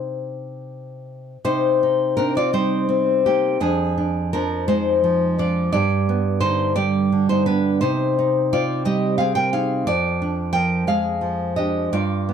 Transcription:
Already playing: C3 D#4 G4 C5
1.45 C3 D#4 C5
1.83 D#4
2.17 C4 D4 A#4
2.37 F4 D5
2.53 G3 D#4 C5
2.89 C4
3.26 A#3 D#4 G4
3.60 F2 D4 G#4
3.98 D4
4.33 F3 D4 A#4
4.68 G#3 D#4 C5
5.04 F3
5.39 D4 F4 D5
5.73 G2 G4 D5
6.09 B3
6.41 D3 D#4 C5
6.76 G3 G4 D5
7.12 D3
7.29 D#4 C5
7.46 B3 D4 B4
7.81 C3 D#4 C5
8.19 D#4
8.53 C4 F4 D5
8.85 G3 G4 D#5
9.18 C4 G#4 F5
9.35 A#4 G5
9.53 D#4 G#4 F5
9.87 F2 F4 D5
10.22 D4
10.53 F3 A#4 G5
10.87 G#3 G#4 F5
11.21 F3
11.56 D4 G4 D#5
11.93 G2 F4 D5
12.29 B3

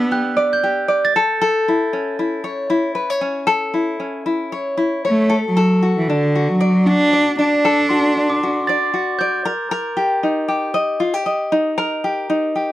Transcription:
Already playing: B3 D4 G4 B4 D5 E6
0.11 G4 F#6
0.37 D5
0.53 G6
0.63 G4
0.88 D5
1.05 A6
1.16 A4
1.41 A4
1.68 E4
1.93 C#4
2.19 E4
2.44 C#5
2.70 E4
2.95 B4
3.10 C#5
3.21 C#4
3.47 A4
3.74 E4
4.00 C#4
4.26 E4
4.52 C#5
4.77 E4
5.05 A3 C#5
5.30 A4
5.47 F#3
5.57 A4
5.83 F#4
5.98 E3
6.08 D3 D4
6.35 F#4
6.49 F#3
6.61 D5
6.86 D4 F#4
7.13 D5
7.39 D4
7.65 A4
7.89 F#4 C6
8.17 D4
8.30 D6
8.43 F#4
8.67 D5 A6
8.94 F#4
9.19 D5 G6
9.45 A#4
9.71 A#4
9.97 G4
10.23 D#4
10.48 G4
10.74 D#5
11.00 F4
11.14 G4
11.26 D#5
11.52 D#4
11.78 A#4
12.04 G4
12.30 D#4
12.56 G4

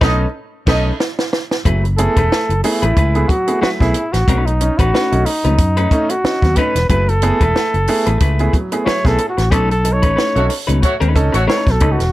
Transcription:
0.01 B1 A3 C#4 D#4 A4 B4 D#5, kick, snare
0.67 B1 A3 C#4 D#4 A4 B4 D#5, kick, snare, crash
1.00 snare
1.19 snare
1.33 snare
1.51 snare
1.65 F#1 F#3 A3 E4 G#4 B4, kick, closed hi-hat
1.84 muted clean electric guitar stroke, closed hi-hat
1.98 A3 B3 E4 G#4 A4, muted clean electric guitar stroke, closed hi-hat
2.17 E1 A3 E4 G#4 B4, kick, closed hi-hat
2.32 A3 E4 G#4 B4, snare
2.49 F#1, closed hi-hat
2.63 A3 B3 E4 G#4, muted clean electric guitar stroke, open hi-hat
2.82 A1 A3 E4 G#4 B4, closed hi-hat
2.97 C#2 A3 E4 G#4 B4, kick, closed hi-hat
3.15 A3 B3 E4 G#4, closed hi-hat
3.28 F#3 F#4, muted clean electric guitar stroke, kick, closed hi-hat
3.47 A3 B3 E4 G#4, muted clean electric guitar stroke, closed hi-hat
3.61 F#3 A3 E4 F#4 G#4 B4, muted fingered electric bass stroke, snare
3.79 B1 A3 B3 E4 G#4, kick, snare, closed hi-hat
3.94 E4 G#4, muted clean electric guitar stroke, closed hi-hat
4.12 A1 F#4, muted clean electric guitar stroke, snare, closed hi-hat
4.28 B1 B2 F#3 A3 C#4 D#4 B4, kick, closed hi-hat
4.46 D#4, muted clean electric guitar stroke, closed hi-hat
4.61 C#4 D#4, muted clean electric guitar stroke, closed hi-hat
4.78 A1 A3 C#4 D#4 F#4 B4, kick, closed hi-hat
4.93 A3 C#4 D#4 B4, snare
5.12 B1 A3 C#4 D#4, closed hi-hat
5.25 D#4, muted clean electric guitar stroke, open hi-hat
5.44 C#2 B2 F#3 A3 C#4 D#4 B4, closed hi-hat
5.58 F#2, muted clean electric guitar stroke, kick, closed hi-hat
5.77 A3 C#4 D#4 B4, closed hi-hat
5.91 A3 C#4 D#4, muted clean electric guitar stroke, kick, closed hi-hat
6.09 F#4, muted clean electric guitar stroke, closed hi-hat
6.24 C#4 D#4, muted fingered electric bass stroke, snare
6.42 D#2 B2 F#3, muted clean electric guitar stroke, kick, snare, closed hi-hat
6.56 A3 C#4 D#4 B4, kick, closed hi-hat
6.75 E1, muted clean electric guitar stroke, snare, closed hi-hat
6.89 F#1 F#3 A3 E4 G#4 B4, kick, closed hi-hat
7.08 A4, muted clean electric guitar stroke, closed hi-hat
7.22 A3 B3 E4 G#4, muted clean electric guitar stroke, closed hi-hat
7.41 E1 A3 E4 G#4 B4, kick, closed hi-hat
7.56 A3 E4 G#4 B4, snare
7.74 F#1, closed hi-hat
7.87 A3 B3 E4 G#4, muted clean electric guitar stroke, open hi-hat
8.06 A1 A3 E4 G#4 B4, closed hi-hat
8.20 C#2 A3 E4 G#4 B4, kick, closed hi-hat
8.39 A3 B3 E4 G#4, closed hi-hat
8.53 F#3, muted clean electric guitar stroke, kick, closed hi-hat
8.72 A3 B3 E4 G#4, muted clean electric guitar stroke, closed hi-hat
8.86 F#3 A3 E4 G#4 B4 C#5, muted fingered electric bass stroke, snare
9.05 B1 A3 B3 E4 G#4 A4, kick, snare, closed hi-hat
9.18 E4 G#4, muted clean electric guitar stroke, closed hi-hat
9.29 F#4
9.37 A1, muted clean electric guitar stroke, snare, closed hi-hat
9.51 B1 B2 F#3 A3 C#4 D#4 A4 B4, kick, closed hi-hat
9.70 A4, muted clean electric guitar stroke, closed hi-hat
9.84 D#4 A4, muted clean electric guitar stroke, closed hi-hat
9.93 C#5
10.02 A1 A3 C#4 D#4 B4, kick, closed hi-hat
10.16 A3 C#4 D#4 B4, snare
10.35 B1 A3 C#4 D#4 F#4 A4 C#5, closed hi-hat
10.49 muted clean electric guitar stroke, open hi-hat
10.67 C#2 B2 F#3 A3 C#4 D#4 B4, closed hi-hat
10.82 A3 F#4 C#5, muted clean electric guitar stroke, kick, closed hi-hat
11.00 D#2 A3 C#4 D#4 B4, closed hi-hat
11.15 C#2 C#4 D#4 A4, muted clean electric guitar stroke, kick, closed hi-hat
11.32 A1 A3 F#4 C#5, muted clean electric guitar stroke, closed hi-hat
11.47 A3 C#4 D#4 A4 B4 C#5, snare
11.66 B1 B2 F#3, muted clean electric guitar stroke, kick, snare, closed hi-hat
11.71 A4
11.80 C#2 A3 C#4 D#4 A4 B4, kick, closed hi-hat
11.92 F#4
11.99 E1, muted clean electric guitar stroke, snare, closed hi-hat

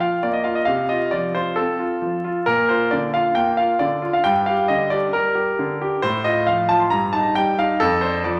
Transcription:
Already playing: F3
0.00 F4 F5
0.23 A#3 D5
0.33 D#5
0.44 F4 F5
0.55 D#5
0.65 C3 F5
0.89 F4 D#5
1.11 F3 D5
1.35 F4 C5
1.56 C4 A4
1.79 F4
2.02 F3
2.24 F4
2.46 A#2 A#4
2.69 F4 C5
2.91 D3 D5
3.14 F4 F5
3.35 A#3 G5
3.57 F4 F5
3.79 D3 D5
4.02 F4
4.13 F5
4.24 G2 G5
4.46 G4 F5
4.68 D3 D#5
4.90 G4 D5
5.13 G3 A#4
5.35 G4
5.59 D3
5.81 G4
6.02 A2 C5
6.24 F4 D#5
6.47 F3 F5
6.69 F4 A5
6.80 C6
6.90 G2 A#5
7.13 D#4 A5
7.35 G3 G5
7.59 D#4 F5
7.80 F2 A4
8.01 D4 C5
8.24 F3 D5

